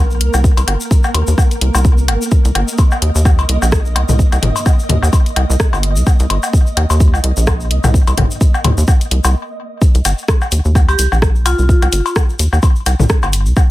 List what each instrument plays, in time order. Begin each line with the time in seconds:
Already playing: analog synth bass A#1, synth texture A#3 A#4
0.11 shaker
0.21 analog synth bass C2, closed hi-hat
0.34 analog synth bass C2, low woodblock, shaker
0.44 kick, shaker
0.57 analog synth bass C2, closed hi-hat, cowbell, shaker
0.67 analog synth bass G1, closed hi-hat, low woodblock
0.81 shaker
0.91 kick, shaker
1.03 low woodblock, shaker
1.14 analog synth bass D#2, closed hi-hat, cowbell
1.27 analog synth bass D#2, shaker
1.38 kick, low woodblock, shaker
1.51 closed hi-hat, shaker
1.61 analog synth bass C2, closed hi-hat
1.75 analog synth bass C2, cowbell, low woodblock, shaker
1.85 kick, shaker
1.98 shaker
2.08 analog synth bass G1, closed hi-hat, low woodblock
2.22 shaker
2.31 synth texture D#5, kick, shaker
2.45 analog synth bass C2, closed hi-hat, shaker
2.55 analog synth bass G1, closed hi-hat, low woodblock
2.68 shaker
2.78 kick, cowbell, shaker
2.91 low woodblock, shaker
3.02 analog synth bass D#2, closed hi-hat
3.15 analog synth bass D#2, shaker
3.25 kick, low woodblock, shaker
3.39 analog synth bass C2, cowbell, shaker
3.49 analog synth bass C2, closed hi-hat
3.62 analog synth bass A#1, low woodblock, shaker
3.72 kick, cross-stick, shaker
3.85 shaker
3.96 analog synth bass C2, closed hi-hat, cowbell, low woodblock
4.09 analog synth bass C2, mid tom, shaker
4.19 kick, shaker
4.32 analog synth bass C2, closed hi-hat, low woodblock, shaker
4.42 analog synth bass G1, closed hi-hat, mid tom
4.56 cowbell, shaker
4.66 kick, low woodblock, shaker
4.79 shaker
4.89 analog synth bass D#2, closed hi-hat, mid tom
5.03 analog synth bass D#2, low woodblock, shaker
5.13 kick, cowbell, shaker
5.26 closed hi-hat, shaker
5.36 analog synth bass C2, closed hi-hat, low woodblock
5.50 analog synth bass C2, shaker
5.60 kick, cross-stick, shaker
5.73 analog synth bass G1, cowbell, low woodblock, shaker
5.83 closed hi-hat
5.96 analog synth bass C2, shaker
6.07 kick, low woodblock, shaker
6.20 analog synth bass C2, closed hi-hat, shaker
6.30 analog synth bass G1, closed hi-hat, cowbell
6.43 low woodblock, shaker
6.53 kick, shaker
6.67 shaker
6.77 analog synth bass D#2, closed hi-hat, low woodblock
6.90 analog synth bass D#2, cowbell, shaker
7.00 kick, shaker
7.13 analog synth bass C2, low woodblock, shaker
7.24 analog synth bass C2, closed hi-hat
7.37 analog synth bass A#1, shaker
7.47 kick, cross-stick, cowbell, low woodblock, shaker
7.60 shaker
7.71 analog synth bass C2, closed hi-hat
7.84 analog synth bass C2, mid tom, low woodblock, shaker
7.94 kick, shaker
8.07 analog synth bass C2, closed hi-hat, cowbell, shaker
8.17 analog synth bass G1, kick, closed hi-hat, mid tom, low woodblock
8.31 shaker
8.41 kick, shaker
8.54 low woodblock, shaker
8.64 analog synth bass D#2, closed hi-hat, mid tom, cowbell
8.78 analog synth bass D#2, shaker
8.87 kick, low woodblock, shaker
9.01 closed hi-hat, shaker
9.11 analog synth bass C2, closed hi-hat
9.24 analog synth bass C2, cowbell, low woodblock, shaker
9.82 kick, shaker
9.95 analog synth bass C2, closed hi-hat, shaker
10.05 analog synth bass G1, closed hi-hat, low woodblock, shaker
10.18 shaker
10.28 kick, cross-stick, cowbell, shaker
10.41 low woodblock, shaker
10.52 analog synth bass D#2, closed hi-hat, shaker
10.65 analog synth bass D#2, shaker
10.75 kick, low woodblock, shaker
10.89 analog synth bass C2, vibraphone G4, cowbell, shaker
10.99 analog synth bass C2, closed hi-hat, shaker
11.12 analog synth bass A#1, low woodblock, shaker
11.22 kick, cross-stick, shaker
11.35 shaker
11.46 analog synth bass C2, vibraphone F4, closed hi-hat, cowbell, low woodblock, shaker
11.59 analog synth bass C2, shaker
11.69 kick, shaker
11.82 analog synth bass C2, closed hi-hat, low woodblock, shaker
11.92 analog synth bass G1, closed hi-hat, shaker
12.06 cowbell, shaker
12.16 kick, cross-stick, low woodblock, shaker
12.29 shaker
12.39 analog synth bass D#2, closed hi-hat, shaker
12.53 analog synth bass D#2, low woodblock, shaker
12.63 kick, cowbell, shaker
12.76 shaker
12.86 analog synth bass C2, closed hi-hat, low woodblock, shaker
12.99 analog synth bass C2, mid tom, shaker
13.09 kick, cross-stick, shaker
13.23 analog synth bass G1, cowbell, low woodblock, shaker
13.33 closed hi-hat, shaker
13.46 analog synth bass C2, shaker
13.57 kick, low woodblock, shaker